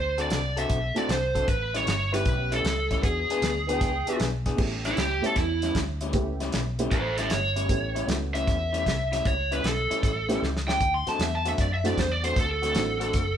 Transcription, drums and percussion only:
0.18 closed hi-hat medium
0.30 snare loud
0.30 closed hi-hat medium
0.57 closed hi-hat medium
0.70 kick loud
0.70 closed hi-hat medium
0.96 closed hi-hat medium
1.09 snare loud
1.09 closed hi-hat medium
1.35 kick medium
1.35 closed hi-hat medium
1.48 kick loud
1.48 closed hi-hat medium
1.75 snare soft
1.75 closed hi-hat medium
1.87 snare loud
1.87 closed hi-hat medium
2.14 snare soft
2.14 closed hi-hat medium
2.25 kick loud
2.25 closed hi-hat medium
2.52 closed hi-hat medium
2.65 snare loud
2.65 closed hi-hat medium
2.91 kick medium
2.91 snare soft
2.91 closed hi-hat medium
3.03 kick loud
3.03 closed hi-hat medium
3.30 closed hi-hat medium
3.42 snare loud
3.42 closed hi-hat medium
3.69 closed hi-hat medium
3.81 kick loud
3.81 snare soft
3.81 closed hi-hat medium
4.07 closed hi-hat medium
4.20 snare loud
4.20 closed hi-hat medium
4.46 kick medium
4.46 snare soft
4.46 closed hi-hat medium
4.58 kick loud
4.58 crash loud
4.85 snare soft
4.85 closed hi-hat medium
4.97 snare loud
4.97 closed hi-hat medium
5.24 closed hi-hat medium
5.36 kick loud
5.36 snare soft
5.36 closed hi-hat medium
5.62 snare soft
5.62 closed hi-hat medium
5.75 kick medium
5.75 snare loud
5.75 closed hi-hat medium
6.01 closed hi-hat medium
6.13 kick loud
6.13 closed hi-hat medium
6.40 snare soft
6.40 closed hi-hat medium
6.52 snare loud
6.52 closed hi-hat medium
6.79 closed hi-hat medium
6.91 kick loud
6.91 closed hi-hat medium
7.18 snare soft
7.18 closed hi-hat medium
7.30 snare loud
7.30 closed hi-hat medium
7.56 closed hi-hat medium
7.69 kick loud
7.69 closed hi-hat medium
7.96 closed hi-hat medium
8.09 snare loud
8.09 closed hi-hat medium
8.35 closed hi-hat medium
8.47 kick loud
8.47 snare soft
8.47 closed hi-hat medium
8.74 closed hi-hat medium
8.86 kick medium
8.86 snare loud
8.86 closed hi-hat medium
9.13 snare soft
9.13 closed hi-hat medium
9.25 kick loud
9.25 closed hi-hat medium
9.52 closed hi-hat medium
9.64 snare loud
9.64 closed hi-hat medium
9.91 closed hi-hat medium
10.03 kick loud
10.03 snare soft
10.03 closed hi-hat medium
10.29 snare soft
10.29 closed hi-hat medium
10.44 snare medium
10.57 snare medium
10.69 snare medium
10.81 kick loud
10.81 closed hi-hat medium
11.07 snare soft
11.07 closed hi-hat medium
11.20 snare loud
11.20 closed hi-hat medium
11.45 closed hi-hat medium
11.58 kick loud
11.58 snare soft
11.58 closed hi-hat medium
11.85 snare soft
11.85 closed hi-hat medium
11.98 kick medium
11.98 snare loud
11.98 closed hi-hat medium
12.24 closed hi-hat medium
12.36 kick loud
12.36 closed hi-hat medium
12.63 snare soft
12.63 closed hi-hat medium
12.75 snare loud
12.75 closed hi-hat medium
13.01 closed hi-hat medium
13.13 kick loud
13.13 snare soft
13.13 closed hi-hat medium

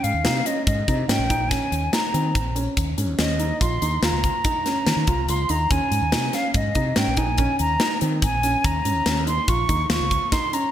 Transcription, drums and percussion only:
0.04 closed hi-hat soft
0.25 snare loud
0.25 closed hi-hat medium
0.46 closed hi-hat soft
0.67 kick medium
0.67 closed hi-hat medium
0.88 kick medium
0.88 closed hi-hat soft
1.09 snare medium
1.09 closed hi-hat medium
1.30 kick medium
1.30 closed hi-hat medium
1.51 kick medium
1.51 snare soft
1.51 closed hi-hat medium
1.72 closed hi-hat medium
1.93 snare medium
1.93 closed hi-hat medium
2.14 closed hi-hat medium
2.35 kick medium
2.35 closed hi-hat medium
2.56 closed hi-hat medium
2.77 kick medium
2.77 closed hi-hat medium
2.98 closed hi-hat medium
3.19 snare loud
3.19 closed hi-hat medium
3.40 closed hi-hat soft
3.61 kick medium
3.61 closed hi-hat medium
3.82 closed hi-hat medium
4.03 snare medium
4.03 closed hi-hat medium
4.24 kick medium
4.24 closed hi-hat soft
4.44 kick medium
4.44 closed hi-hat medium
4.66 snare soft
4.66 closed hi-hat soft
4.87 snare medium
4.87 closed hi-hat medium
5.07 kick medium
5.07 closed hi-hat medium
5.28 closed hi-hat medium
5.49 closed hi-hat medium
5.70 kick medium
5.70 closed hi-hat medium
5.92 closed hi-hat medium
6.12 snare loud
6.12 closed hi-hat medium
6.33 snare soft
6.33 closed hi-hat medium
6.54 kick medium
6.54 closed hi-hat medium
6.75 kick medium
6.75 closed hi-hat medium
6.96 snare loud
6.96 closed hi-hat medium
7.17 kick medium
7.17 closed hi-hat medium
7.38 kick medium
7.38 closed hi-hat medium
7.59 closed hi-hat medium
7.80 snare medium
7.80 closed hi-hat medium
8.01 closed hi-hat medium
8.22 kick loud
8.22 closed hi-hat medium
8.43 closed hi-hat medium
8.64 kick medium
8.64 closed hi-hat medium
8.85 closed hi-hat medium
9.06 snare loud
9.06 closed hi-hat medium
9.27 closed hi-hat medium
9.48 kick medium
9.48 closed hi-hat medium
9.69 kick medium
9.69 closed hi-hat medium
9.90 snare medium
9.90 closed hi-hat medium
10.11 kick medium
10.11 closed hi-hat medium
10.32 kick medium
10.32 snare soft
10.32 closed hi-hat medium
10.53 closed hi-hat medium

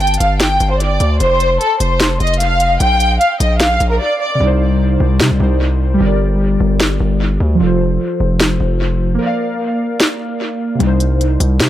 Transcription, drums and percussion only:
0.00 closed hi-hat soft
0.07 closed hi-hat medium
0.14 closed hi-hat medium
0.20 closed hi-hat medium
0.40 snare loud
0.40 closed hi-hat medium
0.60 closed hi-hat medium
0.80 closed hi-hat medium
1.00 closed hi-hat medium
1.20 closed hi-hat medium
1.40 closed hi-hat medium
1.61 closed hi-hat medium
1.80 closed hi-hat medium
2.00 snare loud
2.00 closed hi-hat medium
2.20 closed hi-hat medium
2.27 closed hi-hat medium
2.34 closed hi-hat medium
2.40 closed hi-hat medium
2.60 closed hi-hat medium
2.80 closed hi-hat medium
3.00 closed hi-hat medium
3.21 closed hi-hat medium
3.40 closed hi-hat medium
3.60 snare loud
3.60 closed hi-hat medium
3.80 closed hi-hat medium
5.20 snare loud
6.80 snare loud
8.40 snare loud
10.00 snare loud
10.80 closed hi-hat medium
11.00 closed hi-hat medium
11.21 closed hi-hat medium
11.40 closed hi-hat medium
11.60 snare loud
11.60 closed hi-hat medium

